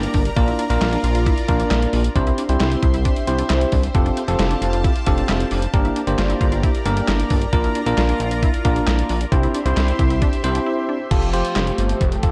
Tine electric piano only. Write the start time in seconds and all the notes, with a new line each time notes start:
Already playing: A#3 D4 G4 A#4
0.37 A#3 D4 F4 A#4
0.70 A#3 D4 F4 A#4
1.48 A#3 D4 F4 A#4
2.16 C4 E4 G4 C5
2.49 C4 E4 G4 C5
3.28 C4 E4 G4 C5
3.95 C4 F4 G4 A4
4.28 C4 F4 G4 A4
5.07 C4 F4 G4 A4
5.74 A#3 D4 G4 A#4
6.07 A#3 D4 G4 C5
6.86 A#3 D4 G4 A#4
7.53 A#3 D4 F4 A#4
7.86 A#3 D4 F4 A#4
8.65 A#3 D4 F4 A#4
9.32 C4 E4 G4 C5
9.66 C4 E4 G4 C5
10.44 C4 E4 G4 C5
11.11 F4 G4 A4
11.33 F4 G4 C5
12.23 F4 G4 A4